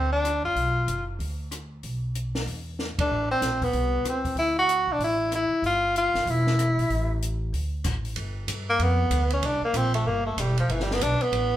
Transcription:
Already playing: upright bass D2
0.12 tenor saxophone D4
0.25 cross-stick, closed hi-hat
0.43 upright bass F#1, tenor saxophone F4
0.55 upright bass B1, open hi-hat
0.87 upright bass F#1, closed hi-hat
1.19 upright bass D2, open hi-hat
1.51 cross-stick, closed hi-hat
1.83 upright bass B1, open hi-hat
2.15 closed hi-hat
2.35 snare, open hi-hat
2.47 upright bass E2, open hi-hat
2.79 snare
2.98 tenor saxophone D4, muted upright bass stroke, kick, ride
3.09 upright bass A1
3.31 tenor saxophone C4
3.41 upright bass A#1, snare, closed hi-hat
3.62 tenor saxophone B3, kick, open hi-hat
3.73 upright bass C2, open hi-hat
4.04 upright bass C#2, cross-stick, closed hi-hat
4.09 tenor saxophone C4
4.25 kick, open hi-hat
4.35 upright bass D2, tenor saxophone E4, open hi-hat
4.59 tenor saxophone F#4
4.69 closed hi-hat
4.87 upright bass C2
4.92 tenor saxophone D4
4.99 upright bass A1, open hi-hat
5.04 tenor saxophone E4
5.32 tenor saxophone E4, cross-stick, closed hi-hat
5.51 muted upright bass stroke
5.62 upright bass G1, tenor saxophone F4, open hi-hat
5.96 tenor saxophone F4, closed hi-hat
6.14 upright bass F1, snare, open hi-hat
6.26 upright bass E1, open hi-hat
6.30 tenor saxophone E4
6.47 snare
6.59 cross-stick, closed hi-hat
6.78 upright bass A#1, open hi-hat
6.90 upright bass A1, open hi-hat
7.22 closed hi-hat
7.53 upright bass D2, open hi-hat
7.84 upright bass A1, kick, cross-stick, closed hi-hat, crash
8.05 open hi-hat
8.16 upright bass G1, ride
8.47 upright bass G2, hi-hat pedal, ride
8.70 tenor saxophone A#3
8.79 upright bass F2, tenor saxophone B3, ride
9.10 upright bass D2, hi-hat pedal, ride
9.30 tenor saxophone C#4, ride
9.42 upright bass C2, ride
9.46 tenor saxophone D4
9.62 tenor saxophone A#3, muted upright bass stroke
9.73 upright bass A#1, tenor saxophone C4, hi-hat pedal, ride
9.94 tenor saxophone A3, ride
10.05 upright bass G1, tenor saxophone A#3
10.26 tenor saxophone A3
10.37 upright bass E1, tenor saxophone G3, hi-hat pedal, ride
10.58 tenor saxophone F3, ride
10.69 upright bass G1, tenor saxophone E3, ride
10.80 tenor saxophone G3, snare
10.91 tenor saxophone B3, snare
11.01 upright bass B1, tenor saxophone D4, hi-hat pedal, ride
11.20 tenor saxophone B3, muted upright bass stroke, ride
11.32 upright bass A1, ride

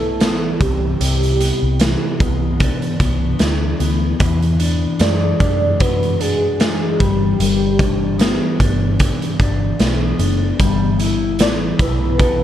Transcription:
Already playing: picked electric bass B1, clean electric guitar G3 B3 E4 A4, soft synth lead A4
0.20 clean electric guitar B3, snare, closed hi-hat
0.61 picked electric bass C2, clean electric guitar C3, soft synth lead G4, kick, closed hi-hat
1.00 picked electric bass C2, clean electric guitar C3, closed hi-hat
1.23 closed hi-hat
1.40 clean electric guitar B3, closed hi-hat
1.63 picked electric bass C2
1.80 clean electric guitar E3, snare, closed hi-hat
2.20 picked electric bass C2, clean electric guitar B3, kick, closed hi-hat
2.60 clean electric guitar D4, kick, closed hi-hat
2.82 closed hi-hat
3.00 picked electric bass C2, clean electric guitar B3, kick, closed hi-hat
3.39 picked electric bass D2, clean electric guitar E3, snare, closed hi-hat
3.79 picked electric bass D2, clean electric guitar B3, closed hi-hat
4.19 picked electric bass E2, clean electric guitar E3, kick, closed hi-hat
4.42 closed hi-hat
4.59 clean electric guitar D4, closed hi-hat
4.99 picked electric bass F#2, clean electric guitar G#3, soft synth lead D5, snare, closed hi-hat
5.40 picked electric bass F#2, clean electric guitar D4, kick, closed hi-hat
5.79 clean electric guitar F#4, soft synth lead B4, kick, closed hi-hat
6.03 closed hi-hat
6.20 clean electric guitar D4, soft synth lead G#4, closed hi-hat
6.60 clean electric guitar G#3, snare, closed hi-hat
6.99 picked electric bass G1, clean electric guitar G3, soft synth lead G4, kick, closed hi-hat
7.39 picked electric bass G1, clean electric guitar G3, closed hi-hat
7.79 clean electric guitar D4, kick, closed hi-hat
8.19 clean electric guitar B3, snare, closed hi-hat
8.59 picked electric bass G1, clean electric guitar D4, kick, closed hi-hat
8.99 kick, closed hi-hat
9.22 closed hi-hat
9.40 picked electric bass G1, clean electric guitar D4, kick, closed hi-hat
9.79 picked electric bass B1, clean electric guitar B3, snare, closed hi-hat
10.19 picked electric bass F#1, clean electric guitar D4, closed hi-hat
10.59 picked electric bass G1, clean electric guitar G3, kick, closed hi-hat
10.99 clean electric guitar E4, closed hi-hat
11.39 picked electric bass A1, clean electric guitar B3, soft synth lead D5, snare, closed hi-hat
11.78 picked electric bass B1, clean electric guitar E4, soft synth lead B4, kick, closed hi-hat
12.18 clean electric guitar A4, kick, closed hi-hat

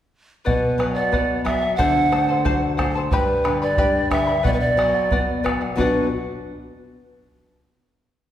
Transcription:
0.45 nylon-string guitar B2, charango B4 D5 F#5, pan flute B4, bombo low
0.78 nylon-string guitar F#3, charango B4 D5 F#5, bombo rim
0.94 pan flute D5, charango F#5
0.98 charango D5
1.12 nylon-string guitar B3, charango B4 D5 F#5, bombo low
1.44 nylon-string guitar F#3, charango B4 D5 F#5, pan flute E5, bombo rim, bombo low
1.61 charango D5 F#5
1.76 nylon-string guitar D3, charango A4 C5 D5 F#5 A5, pan flute F#5, bombo low
2.11 nylon-string guitar A3, charango A4 C5 F#5 A5, bombo rim
2.29 charango A4 C5 A5
2.45 nylon-string guitar F#4, charango A4 C5 D5 F#5 A5, bombo low
2.77 nylon-string guitar A3, charango A4 C5 F#5 A5, bombo rim, bombo low
2.95 charango A4 C5 A5
3.12 nylon-string guitar G2, charango G4 B4 D5 G5 B5, pan flute B4, bombo low
3.44 nylon-string guitar D3, charango B4 D5 G5 B5, bombo rim
3.62 charango B4 D5 B5, pan flute D5
3.78 nylon-string guitar G3, charango G4 B4 D5 G5 B5, bombo low
4.10 nylon-string guitar D3, charango B4 D5 G5 B5, pan flute E5, bombo rim, bombo low
4.27 charango B4 D5 B5
4.43 nylon-string guitar B2, charango B4 D5 F#5, pan flute D5, bombo low
4.53 pan flute B4
4.60 pan flute D5
4.77 nylon-string guitar F#3, charango B4 D5 F#5, bombo rim
4.94 charango D5 F#5
5.11 nylon-string guitar B3, charango B4 D5 F#5, bombo low
5.43 nylon-string guitar F#3, charango B4 D5 F#5, bombo rim, bombo low
5.61 charango D5 F#5
5.76 nylon-string guitar B2 F#3 B3 D4 F#4, pan flute B4, charango B4, bombo low
5.80 charango D5 F#5

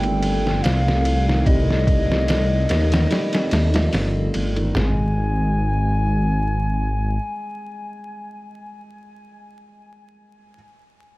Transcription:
Already playing: detuned saw bass G1, felt piano D#3 G3 A#3, analog synth pad A3 A4, flute G5
0.03 felt piano C4, ride
0.22 ride
0.45 felt piano F3, snare
0.62 detuned saw bass C2, flute F5, snare, ride
0.88 snare
1.05 ride
1.28 felt piano D#3, snare
1.46 detuned saw bass C2, felt piano G3, flute D#5, kick, ride
1.71 snare
1.87 kick, ride
2.12 snare
2.28 snare, ride
2.69 detuned saw bass D#2, felt piano A#3, snare, ride
2.92 felt piano D#3, snare, ride
3.11 felt piano G3, snare, ride
3.33 felt piano C4, snare, ride
3.51 detuned saw bass D#2, snare, ride
3.74 felt piano F3, snare, ride
3.93 detuned saw bass G1, snare, open hi-hat
4.34 detuned saw bass G1, ride
4.56 felt piano D#3, ride
4.75 detuned saw bass G#1, felt piano G#3, flute G#5, snare, floor tom

